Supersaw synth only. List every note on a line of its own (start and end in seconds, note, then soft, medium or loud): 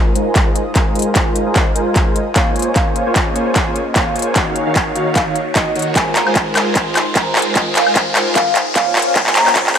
0.00 0.13 G#3 medium
0.00 0.13 F4 medium
0.00 0.14 A#4 medium
0.00 0.13 C5 medium
0.00 0.13 G#5 loud
0.15 0.44 G#3 medium
0.15 0.44 F4 medium
0.15 0.44 A#4 medium
0.15 0.44 C5 medium
0.15 0.44 G#5 medium
0.47 0.59 G#3 medium
0.47 0.59 F4 medium
0.47 0.59 A#4 medium
0.47 0.59 C5 medium
0.47 0.59 G#5 medium
0.76 1.14 G#3 medium
0.76 1.14 F4 medium
0.76 1.14 A#4 medium
0.76 1.14 C5 medium
0.76 1.14 G#5 medium
1.16 1.44 F4 medium
1.47 1.74 G#3 medium
1.47 1.73 F4 medium
1.47 1.73 A#4 medium
1.47 1.73 C5 medium
1.47 1.74 G#5 loud
1.76 2.04 G#3 medium
1.76 2.04 F4 medium
1.76 2.04 A#4 medium
1.76 2.04 C5 medium
1.76 2.04 G#5 loud
2.07 2.19 G#3 medium
2.07 2.19 F4 medium
2.07 2.19 A#4 medium
2.07 2.19 C5 medium
2.07 2.19 G#5 medium
2.36 2.74 A#3 medium
2.36 2.74 F4 medium
2.36 2.74 C5 medium
2.36 2.74 C#5 medium
2.36 2.74 G#5 medium
2.76 3.04 F4 medium
2.76 3.04 C5 medium
3.07 3.33 A#3 medium
3.07 3.34 F4 medium
3.07 3.34 C5 medium
3.07 3.34 C#5 medium
3.07 3.34 G#5 loud
3.36 3.64 A#3 medium
3.36 3.64 F4 medium
3.36 3.64 C5 medium
3.36 3.64 C#5 medium
3.36 3.64 G#5 loud
3.67 3.79 A#3 medium
3.67 3.79 F4 medium
3.67 3.79 C5 medium
3.67 3.79 C#5 medium
3.67 3.79 G#5 medium
3.96 4.34 A#3 medium
3.96 4.34 F4 medium
3.96 4.34 C5 medium
3.96 4.34 C#5 medium
3.96 4.34 G#5 medium
4.36 4.64 D#3 medium
4.36 4.64 D#4 medium
4.36 4.64 F#4 medium
4.36 4.64 C#5 medium
4.36 4.64 F5 medium
4.67 4.94 D#3 medium
4.67 4.94 D#4 medium
4.67 4.94 F#4 medium
4.67 4.94 C#5 medium
4.67 4.94 F5 medium
4.96 5.24 D#3 medium
4.96 5.24 D#4 medium
4.96 5.24 F#4 medium
4.96 5.24 C#5 medium
4.96 5.24 F5 loud
5.27 5.39 D#3 medium
5.27 5.39 D#4 medium
5.27 5.39 F#4 medium
5.27 5.39 C#5 medium
5.27 5.39 F5 medium
5.56 5.70 D#3 medium
5.56 5.70 D#4 medium
5.56 5.70 F#4 medium
5.56 5.70 C#5 medium
5.56 5.70 F#5 medium
5.76 5.94 D#3 medium
5.76 5.94 D#4 medium
5.76 5.94 F#4 medium
5.76 5.94 C#5 medium
5.76 5.94 F#5 medium
5.96 6.24 G#3 medium
5.96 6.24 F4 medium
5.96 6.24 A#4 medium
5.96 6.24 C5 medium
5.96 6.24 G#5 medium
6.27 6.53 G#3 medium
6.27 6.54 F4 medium
6.27 6.53 A#4 medium
6.27 6.53 C5 medium
6.27 6.53 G#5 loud
6.56 6.84 G#3 medium
6.56 6.84 F4 medium
6.56 6.84 A#4 medium
6.56 6.84 C5 medium
6.56 6.84 G#5 loud
6.87 6.99 G#3 medium
6.87 6.99 F4 medium
6.87 6.99 A#4 medium
6.87 6.99 C5 medium
6.87 6.99 G#5 medium
7.16 7.54 G#3 medium
7.16 7.53 F4 medium
7.16 7.53 A#4 medium
7.16 7.54 C5 medium
7.16 7.53 G#5 medium
7.56 7.84 G#3 medium
7.56 7.84 F4 medium
7.56 7.84 A#4 medium
7.56 7.84 C5 medium
7.56 7.84 G#5 medium
7.87 8.14 G#3 medium
7.87 8.13 F4 medium
7.87 8.14 A#4 medium
7.87 8.13 C5 medium
7.87 8.14 G#5 loud
8.15 8.44 G#3 medium
8.15 8.44 F4 medium
8.15 8.44 A#4 medium
8.15 8.44 C5 medium
8.15 8.44 G#5 loud
8.47 8.59 G#3 medium
8.47 8.59 F4 medium
8.47 8.59 A#4 medium
8.47 8.59 C5 medium
8.47 8.59 G#5 medium
8.76 9.14 A#3 medium
8.76 9.14 F4 medium
8.76 9.14 C5 medium
8.76 9.14 C#5 medium
8.76 9.14 G#5 medium
9.16 9.44 A#3 medium
9.16 9.44 F4 medium
9.16 9.44 C#5 medium
9.16 9.44 G#5 loud
9.47 9.74 A#3 medium
9.47 9.74 F4 medium
9.47 9.74 C5 medium
9.47 9.74 C#5 medium
9.47 9.73 G#5 loud